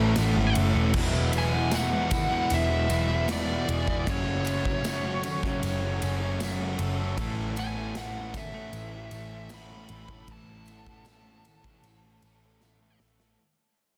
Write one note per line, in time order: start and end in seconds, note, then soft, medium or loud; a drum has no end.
0.00 0.14 A1 medium
0.00 0.15 A2 medium
0.00 0.15 E3 medium
0.00 0.95 E3 medium
0.00 0.15 A3 medium
0.00 0.17 A3 medium
0.00 0.16 B3 medium
0.00 0.16 C#4 medium
0.00 0.95 C#4 medium
0.00 0.16 E4 medium
0.00 0.54 A5 medium
0.15 0.35 A1 loud
0.15 0.92 A2 medium
0.15 0.53 E3 loud
0.15 0.54 A3 loud
0.15 0.95 B3 medium
0.15 0.55 C#4 loud
0.15 0.56 E4 loud
0.15 snare loud
0.15 ride loud
0.15 tambourine medium
0.36 0.54 G#1 medium
0.36 0.55 E3 medium
0.36 0.56 A3 medium
0.54 0.74 F#1 medium
0.54 0.92 A2 medium
0.54 0.92 E3 medium
0.54 0.74 A3 medium
0.54 0.73 C#4 medium
0.54 0.71 E4 medium
0.54 0.95 A4 medium
0.54 ride medium
0.73 0.93 E1 medium
0.73 0.93 A3 medium
0.73 0.92 C#4 medium
0.73 0.91 E4 medium
0.78 0.94 E3 medium
0.93 2.46 E1 loud
0.93 1.71 E2 medium
0.93 1.71 B2 medium
0.93 1.32 E3 medium
0.93 2.50 F#3 medium
0.93 1.33 G#3 loud
0.93 1.34 B3 loud
0.93 1.34 E4 loud
0.93 kick loud
0.93 tambourine soft
0.93 crash loud
1.33 1.54 E3 medium
1.33 1.53 G#3 medium
1.33 1.53 B3 medium
1.33 1.52 E4 medium
1.33 ride medium
1.33 tambourine medium
1.38 1.75 G#5 loud
1.53 1.71 E3 medium
1.53 1.72 G#3 medium
1.53 1.73 B3 medium
1.53 1.73 E4 medium
1.71 2.50 E2 loud
1.71 2.51 B2 medium
1.71 2.10 E3 loud
1.71 2.10 G#3 loud
1.71 2.11 B3 loud
1.71 2.12 E4 medium
1.71 2.54 F#5 loud
1.71 snare loud
1.71 ride loud
1.71 tambourine medium
1.91 2.11 B2 medium
1.91 2.11 E3 medium
2.10 2.33 E3 medium
2.10 2.32 G#3 medium
2.10 2.31 B3 medium
2.10 2.30 E4 medium
2.10 muted distorted electric guitar stroke medium
2.10 kick loud
2.10 ride medium
2.10 tambourine medium
2.29 2.70 B2 medium
2.29 2.68 E3 medium
2.29 2.89 B3 medium
2.29 2.90 E4 medium
2.33 2.87 E3 medium
2.33 2.89 G#3 medium
2.50 2.87 E1 loud
2.50 4.05 F#3 medium
2.50 3.32 E5 loud
2.50 ride loud
2.50 tambourine medium
2.69 2.88 B2 medium
2.69 2.89 E3 medium
2.87 3.64 E1 medium
2.87 3.26 E2 medium
2.87 3.27 B2 medium
2.87 3.10 E3 medium
2.87 3.10 G#3 medium
2.87 3.09 B3 medium
2.87 3.08 E4 medium
2.87 ride medium
2.87 tambourine medium
3.09 3.27 E3 medium
3.09 3.27 G#3 medium
3.09 3.28 B3 medium
3.09 3.29 E4 medium
3.27 4.04 E2 medium
3.27 4.04 B2 loud
3.27 3.64 E3 loud
3.27 3.66 G#3 loud
3.27 3.66 B3 loud
3.27 3.67 E4 loud
3.27 snare loud
3.27 ride loud
3.27 tambourine medium
3.32 4.09 D5 loud
3.46 3.67 B2 medium
3.46 3.68 E3 medium
3.66 4.04 E1 loud
3.66 4.03 E2 medium
3.66 3.87 B2 medium
3.66 3.87 E3 medium
3.66 3.85 G#3 medium
3.66 3.85 B3 medium
3.66 3.84 E4 medium
3.66 4.06 G#4 medium
3.66 ride medium
3.85 4.05 B2 medium
3.85 4.05 E3 medium
3.85 4.04 G#3 medium
3.85 4.04 B3 medium
3.85 4.03 E4 medium
3.85 kick medium
4.06 5.58 F#1 loud
4.06 4.83 F#2 medium
4.06 4.83 C#3 loud
4.06 4.43 F#3 loud
4.06 4.45 A3 loud
4.06 4.46 C#4 loud
4.06 4.46 F#4 loud
4.06 6.76 C#5 medium
4.06 kick loud
4.06 ride loud
4.06 tambourine soft
4.44 4.65 F#3 medium
4.44 4.65 A3 medium
4.44 4.63 C#4 medium
4.44 4.62 F#4 medium
4.44 ride medium
4.44 tambourine medium
4.63 4.84 F#3 medium
4.63 4.86 A3 medium
4.63 4.85 C#4 medium
4.63 4.85 F#4 medium
4.63 kick medium
4.84 5.62 F#2 medium
4.84 5.62 C#3 medium
4.84 5.23 F#3 medium
4.84 5.25 A3 medium
4.84 5.26 C#4 loud
4.84 5.25 F#4 loud
4.84 snare loud
4.84 ride loud
4.84 tambourine medium
5.04 5.23 C#3 medium
5.04 5.23 F#3 medium
5.23 5.45 F#3 medium
5.23 5.45 A3 medium
5.23 5.45 C#4 medium
5.23 5.43 F#4 medium
5.23 muted distorted electric guitar stroke soft
5.23 ride medium
5.23 tambourine medium
5.43 5.83 C#3 medium
5.43 6.00 F#3 medium
5.43 6.02 A3 medium
5.43 6.03 C#4 medium
5.43 6.03 F#4 medium
5.43 kick medium
5.43 snare soft
5.63 5.98 F#1 loud
5.63 7.17 F#3 medium
5.63 ride loud
5.63 tambourine medium
5.82 6.03 C#3 medium
5.82 6.03 F#3 medium
6.01 6.75 F#1 medium
6.01 6.40 F#2 medium
6.01 6.41 C#3 medium
6.01 6.23 F#3 medium
6.01 6.23 A3 medium
6.01 6.22 C#4 medium
6.01 6.20 F#4 medium
6.01 ride medium
6.01 tambourine medium
6.21 6.41 F#3 medium
6.21 6.42 A3 medium
6.21 6.42 C#4 medium
6.21 6.42 F#4 medium
6.40 7.16 F#2 loud
6.40 7.16 C#3 loud
6.40 6.78 F#3 loud
6.40 6.81 A3 loud
6.40 6.81 C#4 loud
6.40 6.81 F#4 loud
6.40 snare loud
6.40 ride loud
6.40 tambourine medium
6.61 6.81 C#3 medium
6.61 6.82 F#3 medium
6.79 7.14 F#1 medium
6.79 7.16 F#2 medium
6.79 7.01 C#3 medium
6.79 7.00 F#3 medium
6.79 7.00 A3 medium
6.79 7.00 C#4 medium
6.79 6.98 F#4 medium
6.79 7.59 A4 medium
6.79 ride medium
6.99 7.17 C#3 medium
6.99 7.17 F#3 medium
6.99 7.18 A3 medium
6.99 7.19 C#4 medium
6.99 7.16 F#4 medium
7.17 8.69 A1 loud
7.17 7.94 A2 medium
7.17 7.57 E3 loud
7.17 7.58 A3 loud
7.17 7.59 C#4 medium
7.17 7.59 A4 loud
7.17 kick loud
7.17 ride loud
7.17 tambourine soft
7.56 7.95 E3 medium
7.56 7.77 A3 medium
7.56 7.95 B3 medium
7.56 7.77 C#4 medium
7.56 7.75 A4 medium
7.56 7.97 G#5 medium
7.56 ride medium
7.56 tambourine medium
7.75 7.96 A3 medium
7.75 7.96 C#4 medium
7.75 7.97 A4 medium
7.95 9.51 A2 medium
7.95 8.33 E3 medium
7.95 8.34 A3 medium
7.95 9.50 B3 medium
7.95 8.36 C#4 loud
7.95 8.36 A4 loud
7.95 8.36 F#5 loud
7.95 snare loud
7.95 ride loud
7.95 tambourine medium
8.16 8.35 E3 medium
8.16 8.36 A3 medium
8.34 9.12 E3 medium
8.34 8.54 A3 medium
8.34 8.53 C#4 medium
8.34 8.52 A4 loud
8.34 9.56 E5 loud
8.34 muted distorted electric guitar stroke medium
8.34 kick medium
8.34 ride medium
8.34 tambourine medium
8.52 9.14 A3 medium
8.52 9.14 C#4 medium
8.52 9.14 A4 medium
8.57 8.95 E3 medium
8.73 9.08 A1 loud
8.73 10.27 E3 medium
8.73 ride loud
8.73 tambourine medium
8.93 9.13 E3 medium
8.93 9.14 A3 medium
9.11 9.86 A1 medium
9.11 9.50 A2 medium
9.11 9.51 E3 medium
9.11 9.33 A3 medium
9.11 9.33 C#4 medium
9.11 9.31 A4 medium
9.11 ride medium
9.11 tambourine medium
9.31 9.52 A3 medium
9.31 9.53 C#4 medium
9.31 9.54 A4 medium
9.49 10.28 A2 loud
9.49 9.90 E3 loud
9.49 9.91 A3 loud
9.49 10.67 B3 medium
9.49 9.92 C#4 loud
9.49 snare loud
9.49 ride loud
9.49 tambourine loud
9.54 9.92 A4 loud
9.54 10.32 B5 loud
9.71 9.91 E3 medium
9.71 9.92 A3 medium
9.89 10.25 A1 medium
9.89 10.27 A2 medium
9.89 10.27 E3 medium
9.89 10.13 A3 medium
9.89 10.11 C#4 medium
9.89 ride medium
9.93 10.09 A4 medium
10.08 10.28 E3 medium
10.08 10.29 A3 medium
10.08 10.29 C#4 medium
10.08 10.30 A4 medium
10.08 kick loud
10.14 10.29 A3 medium
10.27 11.80 A1 loud
10.27 11.06 A2 loud
10.27 10.69 E3 medium
10.27 10.69 A3 loud
10.27 10.70 C#4 loud
10.27 10.71 A4 loud
10.27 kick loud
10.27 ride loud
10.27 tambourine soft
10.32 12.98 A5 medium
10.66 11.06 B3 medium
10.66 ride medium
10.66 tambourine medium
10.70 11.07 E3 medium
10.70 10.90 A3 medium
10.70 10.89 C#4 medium
10.70 10.87 A4 medium
10.86 11.09 C#4 medium
10.86 11.09 A4 medium
10.86 kick medium
10.91 11.08 A3 medium
11.05 11.85 A2 medium
11.05 11.46 E3 medium
11.05 12.61 B3 medium
11.05 snare loud
11.05 ride loud
11.05 tambourine medium
11.09 11.47 A3 loud
11.09 11.47 C#4 medium
11.09 11.48 A4 loud
11.24 11.44 E3 medium
11.24 11.44 A3 medium
11.44 12.04 E3 medium
11.44 11.68 C#4 medium
11.44 muted distorted electric guitar stroke medium
11.44 ride medium
11.44 tambourine medium
11.49 11.69 A3 medium
11.49 11.66 A4 medium
11.64 12.04 E3 medium
11.64 12.01 A3 medium
11.64 12.25 A4 medium
11.64 kick medium
11.69 12.24 A3 medium
11.69 12.25 C#4 medium
11.83 12.19 A1 loud
11.83 13.40 E3 medium
11.83 ride loud
11.83 tambourine medium
12.03 12.22 E3 medium
12.03 12.23 A3 medium
12.22 12.96 A1 medium
12.22 12.60 A2 medium
12.22 12.63 E3 medium
12.22 12.46 A3 medium
12.22 12.44 C#4 medium
12.22 ride medium
12.22 tambourine medium
12.27 12.43 A4 medium
12.44 12.63 A3 medium
12.44 12.64 C#4 medium
12.44 12.65 A4 medium
12.61 13.38 A2 medium
12.61 13.00 E3 medium
12.61 13.00 A3 medium
12.61 13.40 B3 medium
12.61 snare medium
12.61 tambourine medium
12.65 13.01 C#4 loud
12.65 13.02 A4 loud
12.81 13.00 E3 medium
12.81 13.01 A3 medium
12.99 13.35 A1 medium
12.99 13.37 A2 medium
12.99 13.37 E3 medium
12.99 13.23 A3 medium
12.99 13.21 C#4 medium
12.99 snare medium
12.99 tambourine soft
13.03 13.20 A4 medium
13.20 13.39 E3 medium
13.20 13.38 C#4 medium
13.20 13.38 A4 medium
13.20 snare loud
13.24 13.39 A3 medium